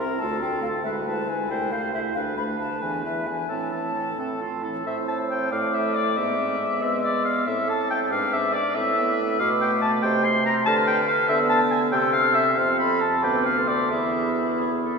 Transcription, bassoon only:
0, 0, Header, 1, 2, 480
1, 0, Start_track
1, 0, Key_signature, 0, "minor"
1, 0, Tempo, 431655
1, 944, Time_signature, 6, 3, 24, 8
1, 2391, Tempo, 451467
1, 5271, Tempo, 436047
1, 7671, Tempo, 426136
1, 13911, Tempo, 452830
1, 16462, End_track
2, 0, Start_track
2, 0, Title_t, "Bassoon"
2, 0, Program_c, 0, 70
2, 0, Note_on_c, 0, 36, 55
2, 142, Note_off_c, 0, 36, 0
2, 232, Note_on_c, 0, 38, 65
2, 861, Note_off_c, 0, 38, 0
2, 946, Note_on_c, 0, 38, 64
2, 1474, Note_off_c, 0, 38, 0
2, 1663, Note_on_c, 0, 36, 57
2, 2306, Note_off_c, 0, 36, 0
2, 2392, Note_on_c, 0, 38, 57
2, 3014, Note_off_c, 0, 38, 0
2, 3103, Note_on_c, 0, 40, 49
2, 3737, Note_off_c, 0, 40, 0
2, 3820, Note_on_c, 0, 45, 48
2, 4462, Note_off_c, 0, 45, 0
2, 4551, Note_on_c, 0, 45, 42
2, 5191, Note_off_c, 0, 45, 0
2, 5273, Note_on_c, 0, 45, 54
2, 5952, Note_off_c, 0, 45, 0
2, 6002, Note_on_c, 0, 45, 54
2, 6703, Note_off_c, 0, 45, 0
2, 6718, Note_on_c, 0, 44, 55
2, 7420, Note_off_c, 0, 44, 0
2, 7430, Note_on_c, 0, 56, 58
2, 8145, Note_off_c, 0, 56, 0
2, 8158, Note_on_c, 0, 45, 60
2, 8886, Note_on_c, 0, 44, 62
2, 8903, Note_off_c, 0, 45, 0
2, 9415, Note_off_c, 0, 44, 0
2, 9606, Note_on_c, 0, 45, 69
2, 10316, Note_off_c, 0, 45, 0
2, 10330, Note_on_c, 0, 47, 74
2, 11033, Note_off_c, 0, 47, 0
2, 11047, Note_on_c, 0, 48, 77
2, 11750, Note_off_c, 0, 48, 0
2, 11762, Note_on_c, 0, 50, 80
2, 12215, Note_off_c, 0, 50, 0
2, 12467, Note_on_c, 0, 50, 81
2, 13181, Note_on_c, 0, 48, 83
2, 13197, Note_off_c, 0, 50, 0
2, 13900, Note_off_c, 0, 48, 0
2, 13907, Note_on_c, 0, 41, 69
2, 14608, Note_on_c, 0, 38, 60
2, 14624, Note_off_c, 0, 41, 0
2, 15331, Note_on_c, 0, 40, 58
2, 15347, Note_off_c, 0, 38, 0
2, 16462, Note_off_c, 0, 40, 0
2, 16462, End_track
0, 0, End_of_file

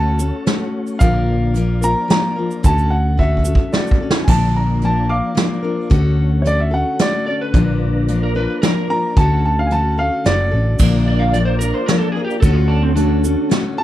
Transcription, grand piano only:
0, 0, Header, 1, 2, 480
1, 0, Start_track
1, 0, Tempo, 543478
1, 896, Time_signature, 3, 2, 24, 8
1, 12219, End_track
2, 0, Start_track
2, 0, Title_t, "Grand piano"
2, 0, Program_c, 0, 0
2, 0, Note_on_c, 0, 81, 99
2, 600, Note_off_c, 0, 81, 0
2, 875, Note_on_c, 0, 77, 97
2, 1624, Note_on_c, 0, 82, 104
2, 1627, Note_off_c, 0, 77, 0
2, 1850, Note_off_c, 0, 82, 0
2, 1863, Note_on_c, 0, 82, 111
2, 2347, Note_on_c, 0, 81, 106
2, 2354, Note_off_c, 0, 82, 0
2, 2566, Note_on_c, 0, 78, 84
2, 2589, Note_off_c, 0, 81, 0
2, 2817, Note_on_c, 0, 76, 92
2, 2818, Note_off_c, 0, 78, 0
2, 3292, Note_on_c, 0, 74, 70
2, 3311, Note_off_c, 0, 76, 0
2, 3629, Note_off_c, 0, 74, 0
2, 3748, Note_on_c, 0, 80, 64
2, 3777, Note_off_c, 0, 80, 0
2, 3794, Note_on_c, 0, 81, 106
2, 4018, Note_off_c, 0, 81, 0
2, 4030, Note_on_c, 0, 82, 77
2, 4256, Note_off_c, 0, 82, 0
2, 4283, Note_on_c, 0, 81, 86
2, 4499, Note_on_c, 0, 86, 87
2, 4503, Note_off_c, 0, 81, 0
2, 4504, Note_on_c, 0, 77, 75
2, 5185, Note_off_c, 0, 77, 0
2, 5429, Note_off_c, 0, 86, 0
2, 5670, Note_on_c, 0, 73, 68
2, 5698, Note_off_c, 0, 73, 0
2, 5715, Note_on_c, 0, 74, 101
2, 5818, Note_off_c, 0, 74, 0
2, 5830, Note_on_c, 0, 76, 71
2, 5935, Note_off_c, 0, 76, 0
2, 5951, Note_on_c, 0, 78, 88
2, 6176, Note_off_c, 0, 78, 0
2, 6190, Note_on_c, 0, 74, 96
2, 6416, Note_off_c, 0, 74, 0
2, 7862, Note_on_c, 0, 82, 104
2, 8091, Note_off_c, 0, 82, 0
2, 8103, Note_on_c, 0, 81, 101
2, 8332, Note_off_c, 0, 81, 0
2, 8350, Note_on_c, 0, 81, 81
2, 8455, Note_off_c, 0, 81, 0
2, 8471, Note_on_c, 0, 77, 87
2, 8538, Note_on_c, 0, 80, 67
2, 8569, Note_off_c, 0, 80, 0
2, 8575, Note_off_c, 0, 77, 0
2, 8587, Note_on_c, 0, 81, 91
2, 8814, Note_off_c, 0, 81, 0
2, 8822, Note_on_c, 0, 77, 91
2, 9051, Note_off_c, 0, 77, 0
2, 9061, Note_on_c, 0, 74, 101
2, 10461, Note_off_c, 0, 74, 0
2, 12173, Note_on_c, 0, 81, 104
2, 12219, Note_off_c, 0, 81, 0
2, 12219, End_track
0, 0, End_of_file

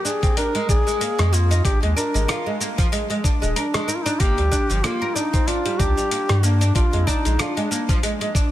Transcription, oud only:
0, 0, Header, 1, 2, 480
1, 0, Start_track
1, 0, Tempo, 638298
1, 1240, Time_signature, 4, 2, 24, 8
1, 6403, End_track
2, 0, Start_track
2, 0, Title_t, "Oud"
2, 0, Program_c, 0, 24
2, 35, Note_on_c, 0, 62, 74
2, 165, Note_off_c, 0, 62, 0
2, 170, Note_on_c, 0, 60, 76
2, 272, Note_off_c, 0, 60, 0
2, 277, Note_on_c, 0, 62, 79
2, 400, Note_off_c, 0, 62, 0
2, 412, Note_on_c, 0, 56, 78
2, 513, Note_off_c, 0, 56, 0
2, 518, Note_on_c, 0, 62, 109
2, 646, Note_off_c, 0, 62, 0
2, 653, Note_on_c, 0, 56, 77
2, 754, Note_off_c, 0, 56, 0
2, 758, Note_on_c, 0, 58, 76
2, 887, Note_off_c, 0, 58, 0
2, 891, Note_on_c, 0, 56, 79
2, 993, Note_off_c, 0, 56, 0
2, 997, Note_on_c, 0, 58, 105
2, 1126, Note_off_c, 0, 58, 0
2, 1133, Note_on_c, 0, 63, 81
2, 1234, Note_off_c, 0, 63, 0
2, 1238, Note_on_c, 0, 62, 75
2, 1360, Note_off_c, 0, 62, 0
2, 1375, Note_on_c, 0, 56, 78
2, 1469, Note_off_c, 0, 56, 0
2, 1478, Note_on_c, 0, 62, 102
2, 1607, Note_off_c, 0, 62, 0
2, 1611, Note_on_c, 0, 56, 79
2, 1713, Note_off_c, 0, 56, 0
2, 1718, Note_on_c, 0, 65, 109
2, 1840, Note_off_c, 0, 65, 0
2, 1853, Note_on_c, 0, 56, 74
2, 1954, Note_off_c, 0, 56, 0
2, 1959, Note_on_c, 0, 58, 77
2, 2087, Note_off_c, 0, 58, 0
2, 2092, Note_on_c, 0, 53, 107
2, 2153, Note_off_c, 0, 53, 0
2, 2197, Note_on_c, 0, 56, 85
2, 2319, Note_off_c, 0, 56, 0
2, 2330, Note_on_c, 0, 56, 80
2, 2427, Note_off_c, 0, 56, 0
2, 2437, Note_on_c, 0, 62, 80
2, 2566, Note_off_c, 0, 62, 0
2, 2572, Note_on_c, 0, 56, 79
2, 2673, Note_off_c, 0, 56, 0
2, 2678, Note_on_c, 0, 70, 81
2, 2756, Note_off_c, 0, 70, 0
2, 2812, Note_on_c, 0, 56, 78
2, 2913, Note_off_c, 0, 56, 0
2, 2916, Note_on_c, 0, 70, 78
2, 3039, Note_off_c, 0, 70, 0
2, 3051, Note_on_c, 0, 62, 112
2, 3148, Note_off_c, 0, 62, 0
2, 3156, Note_on_c, 0, 58, 96
2, 3279, Note_off_c, 0, 58, 0
2, 3291, Note_on_c, 0, 55, 80
2, 3388, Note_off_c, 0, 55, 0
2, 3395, Note_on_c, 0, 62, 108
2, 3525, Note_off_c, 0, 62, 0
2, 3531, Note_on_c, 0, 53, 81
2, 3593, Note_off_c, 0, 53, 0
2, 3637, Note_on_c, 0, 58, 90
2, 3766, Note_off_c, 0, 58, 0
2, 3772, Note_on_c, 0, 70, 79
2, 3868, Note_off_c, 0, 70, 0
2, 3876, Note_on_c, 0, 62, 72
2, 4006, Note_off_c, 0, 62, 0
2, 4011, Note_on_c, 0, 60, 83
2, 4113, Note_off_c, 0, 60, 0
2, 4117, Note_on_c, 0, 62, 82
2, 4239, Note_off_c, 0, 62, 0
2, 4252, Note_on_c, 0, 55, 83
2, 4353, Note_off_c, 0, 55, 0
2, 4359, Note_on_c, 0, 62, 104
2, 4487, Note_off_c, 0, 62, 0
2, 4492, Note_on_c, 0, 55, 80
2, 4593, Note_off_c, 0, 55, 0
2, 4598, Note_on_c, 0, 58, 84
2, 4727, Note_off_c, 0, 58, 0
2, 4730, Note_on_c, 0, 55, 79
2, 4833, Note_off_c, 0, 55, 0
2, 4837, Note_on_c, 0, 58, 105
2, 4966, Note_off_c, 0, 58, 0
2, 4971, Note_on_c, 0, 62, 83
2, 5067, Note_off_c, 0, 62, 0
2, 5076, Note_on_c, 0, 62, 79
2, 5199, Note_off_c, 0, 62, 0
2, 5211, Note_on_c, 0, 56, 76
2, 5308, Note_off_c, 0, 56, 0
2, 5317, Note_on_c, 0, 62, 106
2, 5446, Note_off_c, 0, 62, 0
2, 5453, Note_on_c, 0, 56, 83
2, 5554, Note_off_c, 0, 56, 0
2, 5558, Note_on_c, 0, 65, 103
2, 5680, Note_off_c, 0, 65, 0
2, 5692, Note_on_c, 0, 56, 78
2, 5793, Note_off_c, 0, 56, 0
2, 5798, Note_on_c, 0, 58, 78
2, 5927, Note_off_c, 0, 58, 0
2, 5933, Note_on_c, 0, 53, 102
2, 5994, Note_off_c, 0, 53, 0
2, 6039, Note_on_c, 0, 56, 82
2, 6160, Note_off_c, 0, 56, 0
2, 6174, Note_on_c, 0, 56, 76
2, 6269, Note_off_c, 0, 56, 0
2, 6279, Note_on_c, 0, 62, 79
2, 6403, Note_off_c, 0, 62, 0
2, 6403, End_track
0, 0, End_of_file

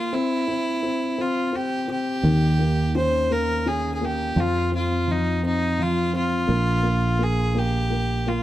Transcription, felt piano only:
0, 0, Header, 1, 2, 480
1, 0, Start_track
1, 0, Key_signature, -4, "minor"
1, 0, Tempo, 707547
1, 76, Time_signature, 6, 3, 24, 8
1, 5718, End_track
2, 0, Start_track
2, 0, Title_t, "Felt piano"
2, 0, Program_c, 0, 0
2, 0, Control_c, 0, 64, 127
2, 0, Note_on_c, 0, 58, 40
2, 74, Note_off_c, 0, 58, 0
2, 84, Control_c, 0, 64, 0
2, 86, Note_on_c, 0, 60, 55
2, 223, Control_c, 0, 64, 127
2, 313, Note_off_c, 0, 60, 0
2, 324, Note_on_c, 0, 60, 39
2, 551, Note_off_c, 0, 60, 0
2, 561, Note_on_c, 0, 60, 43
2, 791, Note_off_c, 0, 60, 0
2, 801, Note_on_c, 0, 60, 42
2, 1026, Note_off_c, 0, 60, 0
2, 1036, Note_on_c, 0, 60, 38
2, 1264, Note_off_c, 0, 60, 0
2, 1274, Note_on_c, 0, 60, 38
2, 1511, Note_off_c, 0, 60, 0
2, 1516, Note_on_c, 0, 51, 48
2, 1527, Control_c, 0, 64, 0
2, 1634, Control_c, 0, 64, 127
2, 1756, Note_on_c, 0, 58, 38
2, 2002, Note_on_c, 0, 61, 38
2, 2232, Note_off_c, 0, 58, 0
2, 2242, Note_on_c, 0, 58, 43
2, 2473, Note_off_c, 0, 61, 0
2, 2484, Note_on_c, 0, 61, 37
2, 2710, Note_off_c, 0, 58, 0
2, 2720, Note_on_c, 0, 58, 42
2, 2933, Note_off_c, 0, 51, 0
2, 2949, Note_off_c, 0, 61, 0
2, 2954, Note_off_c, 0, 58, 0
2, 2961, Note_on_c, 0, 53, 54
2, 2970, Control_c, 0, 64, 0
2, 3069, Control_c, 0, 64, 127
2, 3201, Note_on_c, 0, 60, 43
2, 3432, Note_off_c, 0, 53, 0
2, 3442, Note_on_c, 0, 53, 39
2, 3675, Note_off_c, 0, 60, 0
2, 3685, Note_on_c, 0, 60, 41
2, 3915, Note_off_c, 0, 53, 0
2, 3925, Note_on_c, 0, 53, 41
2, 4150, Note_off_c, 0, 60, 0
2, 4161, Note_on_c, 0, 60, 39
2, 4387, Note_off_c, 0, 53, 0
2, 4393, Note_off_c, 0, 60, 0
2, 4393, Note_on_c, 0, 58, 54
2, 4409, Control_c, 0, 64, 0
2, 4525, Control_c, 0, 64, 127
2, 4625, Note_off_c, 0, 58, 0
2, 4635, Note_on_c, 0, 58, 42
2, 4868, Note_off_c, 0, 58, 0
2, 4878, Note_on_c, 0, 58, 45
2, 5110, Note_off_c, 0, 58, 0
2, 5120, Note_on_c, 0, 58, 46
2, 5351, Note_off_c, 0, 58, 0
2, 5361, Note_on_c, 0, 58, 41
2, 5599, Note_off_c, 0, 58, 0
2, 5609, Note_on_c, 0, 58, 43
2, 5718, Note_off_c, 0, 58, 0
2, 5718, End_track
0, 0, End_of_file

